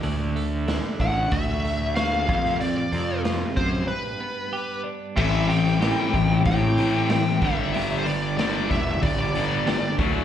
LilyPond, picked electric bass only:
\new Staff \with { instrumentName = "Picked electric bass" } { \clef bass \time 4/4 \key g \mixolydian \tempo 4 = 94 d,4. a,,8 d,4. f,8~ | f,8 f,4 fis,8 r2 | a,,4. a,,8 a,4. g,,8~ | g,,4. e,,8 g,,4. d,8 | }